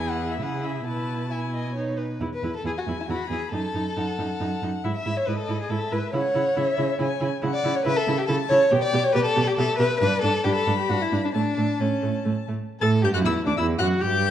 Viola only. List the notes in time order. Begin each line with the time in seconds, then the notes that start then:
Already playing: E4
0.41 E4
0.86 E4
1.30 E4
1.76 D#4
2.21 E4
2.44 E4
2.65 E4
2.88 E4
3.10 E4
3.32 E4
3.53 D#4
3.75 D#4
3.97 D#4
4.19 D#4
4.40 D#4
4.62 D#4
4.84 E4
5.06 E4
5.28 E4
5.49 E4
5.70 E4
5.92 E4
6.13 E4
6.35 E4
6.56 E4
6.77 E4
6.99 E4
7.20 E4
7.42 E4
7.64 E4
7.85 E4
8.07 E4
8.28 E4
8.50 E4
8.71 G4
8.93 G4
9.15 G4
9.36 G4
9.59 G4
9.80 G4
10.01 D4
10.24 D4
10.45 D4
10.67 D4
10.89 D4
11.12 D4
11.35 A3
11.58 A3
11.81 A3
12.03 A3
12.25 A3
12.48 A3
12.82 A4
13.03 G4
13.14 F#4
13.25 E4
13.47 D4
13.58 E4
13.80 F#4
14.02 G4